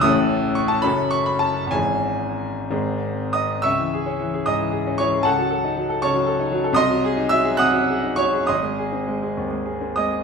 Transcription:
X:1
M:6/8
L:1/16
Q:3/8=70
K:C#m
V:1 name="Grand piano"
d'4 c' a b2 c' b a2 | g6 z4 [dd']2 | [ec'e']6 [dd']4 [cc']2 | [Afa]6 [cac']4 z2 |
[d^bd']4 [ee']2 [fd'f']4 [cc']2 | [d^bd']8- [dbd']2 [dd']2 |]
V:2 name="Grand piano" clef=bass
[A,,,A,,E,CA]6 [F,,,F,,F,CA]6 | [G,,,G,,E,CG]6 [G,,,G,,D,^B,G]6 | C,, E, G C E, G G,, E, G C E, G | C,, F, A D F, A C, F, A D F, A |
^B,,, F, G D F, G ^B,, F, G D F, G | G,,, G, G ^B, G, G D,, G, G B, G, G |]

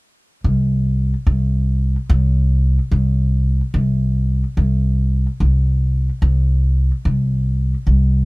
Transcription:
X:1
M:4/4
L:1/8
Q:"Swing" 1/4=145
K:Cphr
V:1 name="Upright bass" clef=bass
z2 C,,3 z C,,2- | C,, z C,,3 z C,,2- | C,, z C,,3 z C,,2- | C,, z C,,3 z C,,2- |
C,, z C,,3 z C,,2 |]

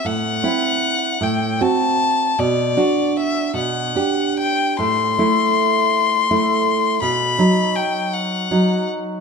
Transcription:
X:1
M:6/8
L:1/8
Q:3/8=52
K:Ador
V:1 name="Violin"
f3 g a2 | d2 e f2 g | c'6 | b2 g f2 z |]
V:2 name="Nylon-string guitar"
A,, [CE]2 A,, [CF]2 | B,, [DF]2 B,, [DG]2 | A,, [A,E]3 [A,E]2 | B,, [F,^D]3 [F,D]2 |]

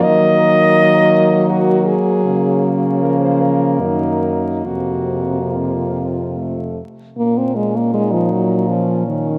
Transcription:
X:1
M:3/4
L:1/16
Q:1/4=79
K:Bbm
V:1 name="French horn"
e8 G2 A2- | A3 z B c B2 E4 | G4 F6 z2 | D8 D4 |]
V:2 name="French horn"
B,12 | B,12- | B,6 z2 =A,2 z2 | z4 E4 D4 |]
V:3 name="French horn" clef=bass
G,12- | G,4 F,4 E,2 z2 | C,8- C,2 z2 | B, C A, B, A, F, G,2 F,2 E,2 |]
V:4 name="French horn" clef=bass
E,8- E,2 z2 | D,8 G,,4 | F,,8- F,,2 z2 | B,,12 |]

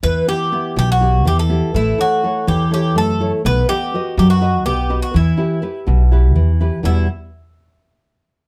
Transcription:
X:1
M:7/8
L:1/16
Q:1/4=124
K:Edor
V:1 name="Bouzouki"
B2 G4 G F3 G A3 | E2 F4 G2 G2 A3 z | B2 G4 G F3 G3 F | E12 z2 |
E2 z12 |]
V:2 name="Nylon-string guitar"
E,2 [B,EG]2 [B,EG]2 B,,2 [B,EG]2 E,2 [B,EG]2 | A,2 [EAc]2 [EAc]2 E,2 [EAc]2 A,2 [EAc]2 | B,2 [B^df]2 [FBd]2 F,2 [FBd]2 B,2 [FBd]2 | E,2 [EGB]2 [EGB]2 B,,2 [EGB]2 E,2 [EGB]2 |
[E,,B,,E,G,B,]2 z12 |]
V:3 name="Upright bass" clef=bass
E,,2 z4 B,,,4 E,,4 | A,,,2 z4 E,,4 F,,4 | B,,,2 z4 F,,4 B,,,4 | E,,2 z4 B,,,4 E,,4 |
E,,2 z12 |]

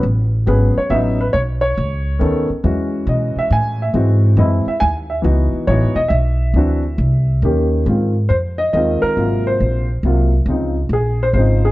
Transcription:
X:1
M:3/4
L:1/8
Q:"Swing" 1/4=138
K:E
V:1 name="Grand piano"
z2 B c e B | c c4 z | z2 d e g e | z2 d e g e |
z2 c d e2- | e4 z2 | [K:Ab] z2 c e e B- | B c2 z3 |
z2 A c c A |]
V:2 name="Grand piano"
z2 [F,B,CG] z [F,B,CD] z | z4 [D,B,CA] z | [E,G,CF]4- [E,G,CF] z | [E,G,^B,F]2 [E,G,B,E] z3 |
[E,B,DF]2 [E,B,DF] z3 | [E,=C=DF] z3 [^D,^A,^C=G]2 | [K:Ab] [E,A,CF] z3 [E,A,CF]2 | [C,_G,B,F]3 z [C,G,B,F] z |
[D,F,CE] z3 [D,F,CE]2 |]
V:3 name="Upright bass" clef=bass
A,,,2 G,,, z A,,,2 | B,,,2 C,,2 D,, z | E,,2 B,, z A,,2 | G,,2 F,, z D,,2 |
C,, z (3A,,, G,,, E,,, B,,,2 | =D,,2 =C,,2 ^D,,2 | [K:Ab] A,,2 F,,2 E,, z | A,,,2 B,,,2 C,,2 |
D,,2 B,,,2 A,,,2 |]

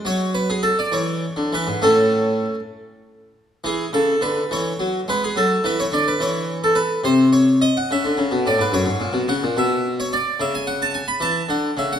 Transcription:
X:1
M:6/8
L:1/16
Q:3/8=71
K:Emix
V:1 name="Harpsichord"
c2 B G A d c4 B2 | A6 z6 | G2 A2 B2 c4 B G | A2 B c d B c3 A B2 |
=c2 ^c2 ^d f e4 =d B | c4 f2 e3 c d2 | e g f a g b a2 f2 e f |]
V:2 name="Harpsichord" clef=bass
F,6 E,3 D, E, G,, | [A,,A,C]6 z6 | E,2 C,2 D,2 E,2 F,2 G,2 | F,2 E,2 D,2 E,6 |
=C,6 ^C, D, C, B,, A,, G,, | F,, G,, ^A,, B,, C, A,, B,,6 | C,6 E,2 D,2 C,2 |]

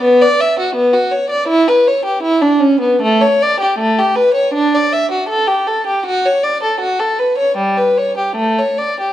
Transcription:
X:1
M:4/4
L:1/16
Q:1/4=80
K:D
V:1 name="Violin"
B, d e F B, F c d E B c G E D C B, | A, c d G A, G B c D d e F A G A G | F c d A F A B c G, B c G A, c d G |]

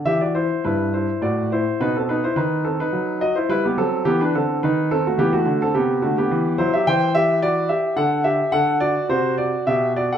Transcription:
X:1
M:3/4
L:1/16
Q:1/4=107
K:Em
V:1 name="Grand piano"
[Ge] [Fd] [Ec]2 [EB]2 [Ec]2 [Fd]2 [Ec]2 | [^DB] [CA] [DB] [Ec] [DB]2 [CA] [DB]3 [F^d] [Ec] | [EB] [B,G] [CA]2 [B,G] [DB] [CA]2 [^DB]2 [CA] [A,F] | [B,G] [A,F]2 [CA] [B,G]2 [A,F] [B,G]3 [Ec] [Ge] |
[K:Dmix] [cg]2 [Ge]2 [Fd]2 [Ge]2 [Af]2 [Ge]2 | [Af]2 [Fd]2 [Fc]2 [Fd]2 [Ge]2 [Fd] [Af] |]
V:2 name="Grand piano" clef=bass
E,4 G,,4 A,,4 | B,,4 ^D,4 F,4 | G,2 F,2 E,2 D,2 ^D,4 | E,2 D,2 C,2 D,2 E,2 F,2 |
[K:Dmix] E,8 D,4 | D,4 C,4 B,,4 |]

